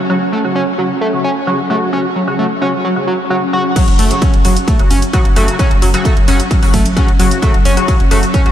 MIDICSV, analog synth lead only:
0, 0, Header, 1, 2, 480
1, 0, Start_track
1, 0, Tempo, 458015
1, 101, Time_signature, 4, 2, 24, 8
1, 8927, End_track
2, 0, Start_track
2, 0, Title_t, "Analog synth lead"
2, 0, Program_c, 0, 81
2, 101, Note_on_c, 0, 54, 86
2, 136, Note_off_c, 0, 54, 0
2, 341, Note_on_c, 0, 57, 107
2, 399, Note_off_c, 0, 57, 0
2, 581, Note_on_c, 0, 61, 99
2, 638, Note_off_c, 0, 61, 0
2, 821, Note_on_c, 0, 54, 77
2, 855, Note_off_c, 0, 54, 0
2, 1061, Note_on_c, 0, 57, 101
2, 1118, Note_off_c, 0, 57, 0
2, 1302, Note_on_c, 0, 61, 100
2, 1359, Note_off_c, 0, 61, 0
2, 1542, Note_on_c, 0, 54, 82
2, 1576, Note_off_c, 0, 54, 0
2, 1781, Note_on_c, 0, 57, 101
2, 1839, Note_off_c, 0, 57, 0
2, 2022, Note_on_c, 0, 61, 100
2, 2079, Note_off_c, 0, 61, 0
2, 2261, Note_on_c, 0, 54, 75
2, 2296, Note_off_c, 0, 54, 0
2, 2501, Note_on_c, 0, 57, 101
2, 2559, Note_off_c, 0, 57, 0
2, 2740, Note_on_c, 0, 61, 99
2, 2798, Note_off_c, 0, 61, 0
2, 2981, Note_on_c, 0, 54, 81
2, 3016, Note_off_c, 0, 54, 0
2, 3221, Note_on_c, 0, 54, 76
2, 3279, Note_off_c, 0, 54, 0
2, 3461, Note_on_c, 0, 54, 77
2, 3519, Note_off_c, 0, 54, 0
2, 3701, Note_on_c, 0, 66, 102
2, 3787, Note_off_c, 0, 66, 0
2, 3941, Note_on_c, 0, 54, 87
2, 3976, Note_off_c, 0, 54, 0
2, 4180, Note_on_c, 0, 57, 104
2, 4238, Note_off_c, 0, 57, 0
2, 4421, Note_on_c, 0, 61, 106
2, 4479, Note_off_c, 0, 61, 0
2, 4662, Note_on_c, 0, 54, 76
2, 4696, Note_off_c, 0, 54, 0
2, 4901, Note_on_c, 0, 57, 98
2, 4959, Note_off_c, 0, 57, 0
2, 5141, Note_on_c, 0, 61, 100
2, 5199, Note_off_c, 0, 61, 0
2, 5382, Note_on_c, 0, 54, 87
2, 5416, Note_off_c, 0, 54, 0
2, 5622, Note_on_c, 0, 57, 102
2, 5679, Note_off_c, 0, 57, 0
2, 5861, Note_on_c, 0, 61, 106
2, 5919, Note_off_c, 0, 61, 0
2, 6100, Note_on_c, 0, 54, 78
2, 6135, Note_off_c, 0, 54, 0
2, 6340, Note_on_c, 0, 57, 104
2, 6398, Note_off_c, 0, 57, 0
2, 6580, Note_on_c, 0, 61, 97
2, 6638, Note_off_c, 0, 61, 0
2, 6821, Note_on_c, 0, 54, 81
2, 6855, Note_off_c, 0, 54, 0
2, 7060, Note_on_c, 0, 57, 100
2, 7118, Note_off_c, 0, 57, 0
2, 7300, Note_on_c, 0, 61, 103
2, 7358, Note_off_c, 0, 61, 0
2, 7541, Note_on_c, 0, 54, 74
2, 7575, Note_off_c, 0, 54, 0
2, 7780, Note_on_c, 0, 57, 103
2, 7838, Note_off_c, 0, 57, 0
2, 8021, Note_on_c, 0, 61, 102
2, 8078, Note_off_c, 0, 61, 0
2, 8260, Note_on_c, 0, 54, 81
2, 8295, Note_off_c, 0, 54, 0
2, 8501, Note_on_c, 0, 57, 100
2, 8558, Note_off_c, 0, 57, 0
2, 8742, Note_on_c, 0, 61, 101
2, 8799, Note_off_c, 0, 61, 0
2, 8927, End_track
0, 0, End_of_file